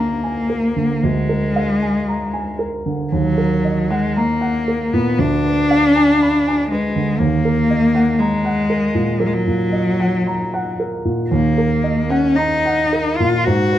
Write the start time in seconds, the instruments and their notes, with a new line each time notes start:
Already playing: grand piano D2 A#4 F5 G#5 A#5, cello A#3
0.24 grand piano G#5
0.50 grand piano A#4
0.76 grand piano D3
1.03 grand piano D2, cello G#3
1.29 grand piano A#4
1.56 grand piano F5
1.82 grand piano G#5
2.08 grand piano A#5
2.33 grand piano G#5
2.59 grand piano A#4
2.86 grand piano D3
3.12 grand piano D#2, cello F#3
3.38 grand piano A#4
3.65 grand piano D#5
3.90 cello G#3, grand piano F#5
4.16 cello A#3, grand piano A#5
4.41 grand piano F#5
4.68 grand piano A#4
4.93 grand piano A#2, cello B3
5.19 grand piano D2, cello D4
5.44 grand piano B4
5.71 grand piano F5
5.96 grand piano G#5
6.22 grand piano B5
6.47 grand piano G#5
6.70 cello G#3, grand piano B4
6.96 grand piano D3
7.19 grand piano D#2, cello A#3
7.45 grand piano A#4
7.70 grand piano D#5
7.95 grand piano F#5
8.20 cello G#3, grand piano A#5
8.45 grand piano F#5
8.70 grand piano A#4
8.95 grand piano A#2
9.20 cello F#3, grand piano A#4
9.27 cello G#3
9.33 cello F#3
9.47 grand piano A#2
9.73 grand piano D#5
10.00 grand piano F#5
10.27 grand piano A#5
10.54 grand piano F#5
10.80 grand piano A#4
11.05 grand piano A#2
11.30 grand piano D#2, cello A#3
11.58 grand piano A#4
11.84 grand piano D#5
12.09 cello C#4, grand piano F#5
12.36 cello D#4, grand piano A#5
12.66 grand piano F#5
12.93 grand piano A#4
13.17 grand piano A#2, cello F4
13.44 grand piano G#2, cello F#4
13.72 grand piano B4